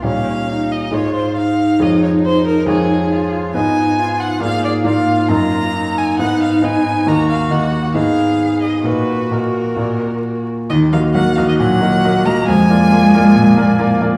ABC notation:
X:1
M:4/4
L:1/16
Q:1/4=136
K:Db
V:1 name="Violin"
f6 e2 d2 c2 f4 | e2 d2 c2 B2 A6 z2 | [K:Ebm] a6 g2 f2 =d2 f4 | b6 a2 g2 f2 a4 |
b2 f2 g4 f6 e2 | c4 B8- B2 z2 | e2 f2 g2 f e g6 b2 | a12- a2 z2 |]
V:2 name="Cello"
D4 E4 F4 E4- | E12 F4 | [K:Ebm] E4 F4 A4 F4- | F4 E12 |
G8 A8 | G12- G2 z2 | E,2 F,2 G,2 F, E, G,6 B,2 | A,12- A,2 z2 |]
V:3 name="Grand piano"
[B,,=G,Ed]8 [A,,A,Ee]8 | [F,,A,Fd]8 [F,,A,Fd]8 | [K:Ebm] [A,,CFe]8 [A,,B,F=d]4 [A,,B,Fd]4 | [G,,B,Ee]8 [A,,CEe]4 [A,,CEe]4 |
[E,,B,Ee]4 [E,,B,Ee]4 [A,,CEe]8 | [B,,B,Ge]4 [B,,B,Ge]4 [B,,B,F=d]8 | E,,2 [B,Ge]2 [B,Ge]2 [B,Ge]2 B,,2 [B,Ge]2 [B,Ge]2 [B,Ge]2 | F,,2 [B,F=d]2 [B,Fd]2 [B,Fd]2 B,,2 [B,Fd]2 [B,Fd]2 [B,Fd]2 |]